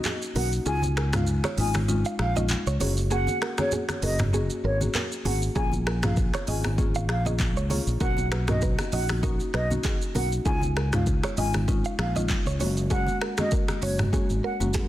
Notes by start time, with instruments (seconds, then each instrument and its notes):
Already playing: marimba A#3 C#4 D#4 F#4
0.04 clean electric guitar G#4, clap, low conga, shaker
0.22 shaker
0.35 fingered electric bass B1, marimba A#3 C#4 D#4 F#4, clean electric guitar A#4, flute F#5, open hi-hat, high conga, shaker
0.52 shaker
0.66 fingered electric bass C#2, marimba G#3 C#4 D#4 F4, clean electric guitar G#4, flute G#5, shaker
0.82 high conga, shaker
0.97 clean electric guitar A#4, finger snap, cross-stick
1.13 marimba G#3 C#4 D#4 F4, flute F5, finger snap, cross-stick, mid tom, high conga, shaker
1.27 shaker
1.44 clean electric guitar C#5, finger snap, cross-stick, high conga, shaker
1.58 fingered electric bass G#1, marimba G#3 C#4 D#4 F4, clean electric guitar D#5, flute G#5, open hi-hat, low conga, shaker
1.74 finger snap, cross-stick, high conga, shaker
1.88 marimba G#3 C#4 D#4 F4, low conga, shaker
2.05 clean electric guitar F5, shaker
2.19 fingered electric bass A#1, flute F5, finger snap, cross-stick
2.36 marimba G#3 C#4 D#4 F4, clean electric guitar D#5, high conga, shaker
2.49 clap, low conga, shaker
2.67 fingered electric bass C#2, clean electric guitar C#5, shaker
2.80 fingered electric bass F#1, marimba A#3 C#4 F#4 G#4, clean electric guitar C#5, open hi-hat, high conga, shaker
2.97 shaker
3.11 marimba A#3 C#4 F#4 G#4, clean electric guitar G#4, flute F#5, shaker
3.27 high conga, shaker
3.42 clean electric guitar A#4, finger snap, cross-stick
3.58 marimba A#3 C#4 F#4 G#4, clean electric guitar G#4, flute C#5, finger snap, cross-stick, high conga, shaker
3.72 clean electric guitar G#4, low conga, shaker
3.89 finger snap, cross-stick, high conga, shaker
4.02 fingered electric bass F#1, marimba A#3 C#4 F#4 G#4, clean electric guitar A#4, flute D#5, open hi-hat, low conga, shaker
4.19 finger snap, cross-stick, mid tom, high conga, shaker
4.33 marimba A#3 C#4 F#4 G#4, clean electric guitar G#4, low conga, shaker
4.50 shaker
4.64 fingered electric bass G#1, clean electric guitar A#4, flute C#5
4.81 marimba A#3 C#4 F#4 G#4, high conga, shaker
4.94 clean electric guitar A#4, clap, low conga, shaker
5.12 shaker
5.25 fingered electric bass G#1, marimba A#3 C#4 F#4 G#4, clean electric guitar G#4, flute F#5, open hi-hat, high conga
5.42 shaker
5.55 fingered electric bass A#1, marimba A#3 C#4 F4 G#4, clean electric guitar G#4, flute G#5, kick, shaker
5.72 high conga, shaker
5.87 clean electric guitar A#4, finger snap, cross-stick
6.03 marimba A#3 C#4 F4 G#4, flute F5, finger snap, cross-stick, mid tom, high conga, shaker
6.17 kick, shaker
6.34 clean electric guitar C#5, finger snap, cross-stick, high conga, shaker
6.47 fingered electric bass G#1, marimba A#3 C#4 F4 G#4, clean electric guitar D#5, flute G#5, open hi-hat, low conga, shaker
6.64 finger snap, cross-stick, high conga, shaker
6.78 marimba A#3 C#4 F4 G#4, kick, low conga, shaker
6.95 clean electric guitar F5, shaker
7.09 fingered electric bass A#1, flute F5, finger snap, cross-stick
7.25 marimba A#3 C#4 F4 G#4, clean electric guitar D#5, high conga, shaker
7.39 kick, clap, low conga, shaker
7.56 fingered electric bass C#2, clean electric guitar C#5, shaker
7.70 marimba A#3 C#4 F4 G#4, clean electric guitar C#5, open hi-hat, high conga, shaker
7.87 fingered electric bass A#1, shaker
8.00 fingered electric bass B1, marimba A#3 C#4 D#4 F#4, clean electric guitar A#4, flute F#5, kick, shaker
8.17 high conga, shaker
8.32 clean electric guitar B4, finger snap, cross-stick
8.48 marimba A#3 C#4 D#4 F#4, clean electric guitar A#4, flute D#5, finger snap, cross-stick, mid tom, high conga, shaker
8.61 clean electric guitar B4, kick, shaker
8.79 finger snap, cross-stick, high conga, shaker
8.92 fingered electric bass A#1, marimba A#3 C#4 D#4 F#4, clean electric guitar D#5, flute F#5, open hi-hat, low conga, shaker
9.08 finger snap, cross-stick, high conga, shaker
9.23 marimba A#3 C#4 D#4 F#4, clean electric guitar A#4, kick, low conga, shaker
9.40 shaker
9.54 fingered electric bass B1, clean electric guitar B4, flute D#5, finger snap, cross-stick
9.70 marimba A#3 C#4 D#4 F#4, high conga, shaker
9.84 clean electric guitar G#4, kick, clap, low conga, shaker
10.02 shaker
10.15 fingered electric bass B1, marimba A#3 C#4 D#4 F#4, clean electric guitar A#4, flute F#5, open hi-hat, high conga, shaker
10.32 shaker
10.45 fingered electric bass C#2, marimba G#3 C#4 D#4 F4, clean electric guitar G#4, flute G#5, kick, shaker
10.62 high conga, shaker
10.77 clean electric guitar A#4, finger snap, cross-stick
10.93 marimba G#3 C#4 D#4 F4, flute F5, finger snap, cross-stick, mid tom, high conga, shaker
11.06 kick, shaker
11.23 clean electric guitar C#5, finger snap, cross-stick, high conga, shaker
11.37 fingered electric bass G#1, marimba G#3 C#4 D#4 F4, clean electric guitar D#5, flute G#5, open hi-hat, low conga, shaker
11.53 finger snap, cross-stick, high conga, shaker
11.68 marimba G#3 C#4 D#4 F4, kick, low conga, shaker
11.85 clean electric guitar F5, shaker
11.99 fingered electric bass A#1, flute F5, finger snap, cross-stick
12.15 marimba G#3 C#4 D#4 F4, clean electric guitar D#5, high conga, shaker
12.29 kick, clap, low conga, shaker
12.46 fingered electric bass C#2, clean electric guitar C#5, shaker
12.60 fingered electric bass F#1, marimba G#3 A#3 C#4 F#4, clean electric guitar C#5, open hi-hat, high conga, shaker
12.77 shaker
12.90 marimba G#3 A#3 C#4 F#4, clean electric guitar G#4, flute F#5, kick, shaker
13.07 high conga, shaker
13.21 clean electric guitar A#4, finger snap, cross-stick
13.38 marimba G#3 A#3 C#4 F#4, clean electric guitar G#4, flute D#5, finger snap, cross-stick, high conga, shaker
13.51 clean electric guitar A#4, kick, shaker
13.68 finger snap, cross-stick, high conga, shaker
13.82 fingered electric bass F#1, marimba G#3 A#3 C#4 F#4, flute C#5, clean electric guitar C#5, open hi-hat, low conga, shaker
13.98 finger snap, cross-stick, mid tom, high conga, shaker
14.13 marimba G#3 A#3 C#4 F#4, clean electric guitar G#4, kick, low conga, shaker
14.30 fingered electric bass G#1, shaker
14.44 clean electric guitar A#4, flute F#5
14.60 fingered electric bass F#1, marimba G#3 A#3 C#4 F#4, high conga, shaker
14.73 fingered electric bass F#2, clean electric guitar G#4, kick, snare, low conga, shaker